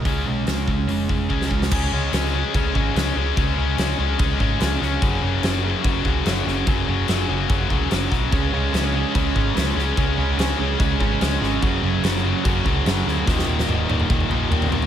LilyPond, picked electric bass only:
\new Staff \with { instrumentName = "Picked electric bass" } { \clef bass \time 4/4 \key des \mixolydian \tempo 4 = 145 des,8 ces,8 des,8 des,8 f,,8 f,,8 des,8 des,8 | des,8 des,8 des,4 des,8 aes,,8 des,8 des,8 | des,8 des,8 des,8 des,8 des,8 aes,,8 des,8 des,8 | ges,,8 ges,,8 ges,,4 ges,,8 des,8 ges,,8 ges,,8 |
ges,,8 ges,,8 ges,,8 ges,,8 ges,,8 des,8 ges,,8 ces,8 | des,8 des,8 des,4 des,8 aes,,8 des,8 des,8 | des,8 des,8 des,8 des,8 des,8 aes,,8 des,8 aes,,8 | ges,,8 ges,,8 ges,,4 ges,,8 des,8 ges,,8 d,8 |
ees,,8 ees,,8 ees,,8 ees,,8 ees,,8 bes,,8 ees,,8 ees,,8 | }